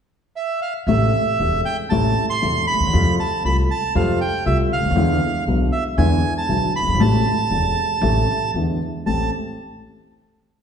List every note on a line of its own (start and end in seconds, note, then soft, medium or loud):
0.36 0.60 E5 medium
0.62 0.73 F5 medium
0.87 1.09 A1 medium
0.87 1.10 A1 medium
0.87 1.10 A2 medium
0.87 1.09 C3 medium
0.87 1.10 G3 medium
0.87 1.10 A3 medium
0.87 1.10 E4 medium
0.87 1.61 E5 medium
1.39 1.61 E1 soft
1.39 1.61 E2 soft
1.39 1.61 C3 soft
1.39 1.61 G3 soft
1.39 1.61 A3 soft
1.39 1.62 E4 soft
1.65 1.77 G5 medium
1.90 2.13 A1 medium
1.90 2.12 A2 medium
1.90 2.12 C3 medium
1.90 2.12 G3 medium
1.90 2.12 A3 medium
1.90 2.13 E4 medium
1.90 2.26 A5 medium
2.30 2.65 C6 medium
2.42 2.64 E1 soft
2.42 2.64 E1 medium
2.42 2.64 E2 soft
2.42 2.64 C3 soft
2.42 2.64 G3 soft
2.42 2.64 A3 soft
2.42 2.64 E4 soft
2.67 3.15 B5 loud
2.74 2.79 D2 soft
2.74 2.81 D2 soft
2.80 2.86 D#2 medium
2.80 2.87 D#2 medium
2.87 2.93 E2 medium
2.87 2.94 E2 medium
2.93 3.15 F2 medium
2.93 3.15 C3 medium
2.93 3.15 F3 medium
2.93 3.15 G3 medium
2.93 3.15 A3 medium
2.93 3.15 F4 medium
3.20 3.43 A5 medium
3.44 3.66 C2 medium
3.44 3.66 C2 soft
3.44 3.66 C3 soft
3.44 3.66 G3 soft
3.44 3.66 A3 soft
3.44 3.66 F4 soft
3.44 3.57 B5 medium
3.71 3.94 A5 medium
3.95 4.17 F2 medium
3.95 4.17 C3 medium
3.95 4.17 F3 medium
3.95 4.17 G3 medium
3.95 4.17 A3 medium
3.95 4.17 F4 medium
3.95 4.19 F5 medium
4.21 4.45 G5 medium
4.46 4.67 C2 medium
4.46 4.67 C3 medium
4.46 4.67 G3 soft
4.46 4.68 A3 soft
4.46 4.68 F4 medium
4.46 4.58 E5 medium
4.73 5.44 F5 medium
4.78 4.84 C#2 soft
4.78 4.83 C#2 soft
4.84 4.90 D2 medium
4.90 4.97 D#2 medium
4.90 4.95 D#2 medium
4.95 5.18 E2 medium
4.95 5.18 D3 medium
4.95 5.18 E3 medium
4.95 5.18 G#3 medium
4.95 5.18 B3 medium
4.95 5.18 E4 medium
5.47 5.68 B1 medium
5.47 5.69 B1 medium
5.47 5.69 B2 soft
5.47 5.69 D3 soft
5.47 5.69 G#3 soft
5.47 5.69 B3 soft
5.47 5.69 E4 soft
5.72 5.84 E5 medium
5.98 6.19 E2 medium
5.98 6.19 D3 medium
5.98 6.20 E3 medium
5.98 6.19 G#3 medium
5.98 6.19 B3 medium
5.98 6.20 E4 medium
5.98 6.34 G#5 medium
6.38 6.73 A5 medium
6.49 6.70 B1 soft
6.49 6.70 B1 medium
6.49 6.70 B2 medium
6.49 6.70 D3 soft
6.49 6.70 G#3 soft
6.49 6.70 B3 soft
6.49 6.71 E4 soft
6.76 7.02 B5 medium
6.81 6.86 F#1 soft
6.81 6.88 F#1 soft
6.87 6.94 G1 medium
6.94 7.00 G#1 medium
6.99 7.22 A1 medium
6.99 7.22 A2 medium
6.99 7.21 C3 medium
6.99 7.21 G3 medium
6.99 7.22 A3 medium
6.99 7.22 E4 medium
6.99 8.51 A5 medium
7.50 7.72 E1 medium
7.50 7.73 E1 medium
7.50 7.73 E2 soft
7.50 7.73 C3 soft
7.50 7.73 G3 soft
7.50 7.73 A3 soft
7.50 7.73 E4 soft
8.01 8.24 A1 medium
8.01 8.24 A2 medium
8.01 8.24 C3 medium
8.01 8.24 G3 medium
8.01 8.24 A3 medium
8.01 8.24 E4 medium
8.53 8.76 E2 medium
8.53 8.77 E2 soft
8.53 8.77 D3 soft
8.53 8.77 E3 soft
8.53 8.77 G#3 soft
8.53 8.77 B3 soft
8.53 8.77 E4 soft
9.06 9.28 A1 soft
9.06 9.28 A3 soft
9.06 9.28 C4 soft
9.06 9.28 G4 medium
9.06 9.31 A5 medium